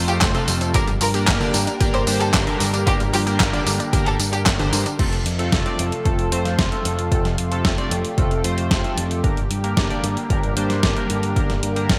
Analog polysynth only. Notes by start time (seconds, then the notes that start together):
Already playing: A3 C4 F4 C5
0.35 A3 C4 F4 A4
0.74 A#3 D4 G4 A#4
1.14 A#3 D4 G4 A#4
1.41 A#3 D4 G4 D5
1.81 A#3 D4 G4 A#4
2.07 A#3 D4 G4 C5
2.47 A#3 D4 G4 A#4
2.87 A#3 D4 G4 A#4
3.27 A#3 D4 G4 A#4
3.53 A#3 D4 G4 D5
3.93 A#3 D4 G4 A#4
4.59 A#3 D4 G4 C5
4.99 A3 C4 F4 A4
5.39 A3 C4 F4 A4
5.66 A3 C4 F4 D5
6.05 A3 C4 F4 A4
6.32 A3 C4 F4 C5
6.72 A3 C4 F4 A4
7.12 A3 C4 F4 A4
7.51 A3 C4 F4 A4
7.78 A3 C4 F4 D5
8.18 A3 C4 F4 A4
8.44 A3 C4 F4 C5
8.84 A3 C4 F4 A4
9.24 A#3 D4 G4 A#4
9.64 A#3 D4 G4 A#4
9.90 A#3 D4 G4 D5
10.30 A#3 D4 G4 A#4
10.57 A#3 D4 G4 C5
10.96 A#3 D4 G4 A#4
11.36 A#3 D4 G4 A#4
11.76 A#3 D4 G4 A#4